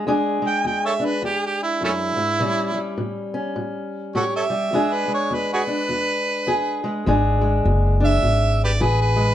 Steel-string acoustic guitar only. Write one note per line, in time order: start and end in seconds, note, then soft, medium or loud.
0.07 0.60 E2 medium
0.07 0.41 G#3 medium
0.07 0.99 D4 medium
0.07 2.38 G#4 medium
0.42 2.38 G#3 medium
0.65 1.18 E2 medium
1.00 2.37 D4 medium
1.22 1.76 E2 medium
1.81 2.16 F#2 medium
2.16 2.40 G#2 medium
2.40 2.94 A2 medium
2.40 2.73 G3 medium
2.40 3.33 C#4 medium
2.74 4.49 G3 medium
2.98 3.52 A2 medium
3.34 4.71 C#4 medium
3.56 4.10 A2 medium
4.15 4.69 A2 medium
4.15 4.71 G4 medium
4.50 4.73 G3 medium
4.73 5.27 E2 medium
4.73 5.08 G#3 medium
4.73 5.67 D4 medium
4.73 6.47 G#4 medium
5.08 6.83 G#3 medium
5.31 5.85 E2 medium
5.67 7.08 D4 medium
5.89 6.43 E2 medium
6.47 7.01 E2 medium
6.47 7.08 G#4 medium
6.84 7.07 G#3 medium
7.06 7.60 E2 medium
7.06 7.41 G#3 medium
7.06 8.00 D4 medium
7.06 8.80 G#4 medium
7.41 9.15 G#3 medium
7.65 8.19 E2 medium
8.00 9.35 D4 medium
8.22 8.77 E2 medium
8.80 9.35 E2 medium
8.80 9.35 G#4 medium
9.16 9.35 G#3 medium